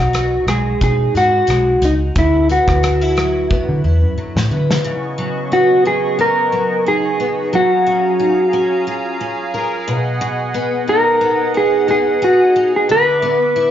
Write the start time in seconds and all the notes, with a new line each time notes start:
Already playing: B1 B2 F#3 D#4 F#4
0.13 F#4, cross-stick, closed hi-hat
0.47 B1 G#3 G#4, cross-stick, closed hi-hat
0.81 B2 D#4 G#4, kick, closed hi-hat
1.15 G#2 F#4, closed hi-hat
1.47 B1 G#3, cross-stick, closed hi-hat
1.82 C#2 D#4, closed hi-hat
2.16 D2 D3 E4, kick, closed hi-hat
2.49 B3 F#4, closed hi-hat
2.68 D2, kick, cross-stick
2.83 D4, cross-stick, closed hi-hat
3.01 E4
3.17 F#3, cross-stick, closed hi-hat
3.50 B3, kick
3.69 D3
3.84 E2 E4
4.03 F#2
4.18 F#3, muted picked electric bass stroke
4.36 A2, snare
4.51 D3 B3
4.71 snare
4.84 C#3 B3 D#5 G#5 C#6
5.18 F#3
5.52 B3 F#4
5.85 F#3 G#4
6.19 B3 A#4
6.52 F#3
6.86 D#4 G#4
7.20 B3
7.53 F#3 F#4 G#4 F5 A#5
7.87 C#4
8.20 D#4
8.53 C#4
8.87 F4
9.21 C#4
9.54 A#4
9.88 B2 D#5 F#5
10.21 B2
10.54 B3
10.87 D#4 A#4
11.21 B3
11.54 D#4 G#4
11.88 B3 G#4
12.22 F#4 G#4
12.56 D#4
12.76 G#4
12.89 D3 B3 B4 E5 D6
13.22 B3
13.56 E4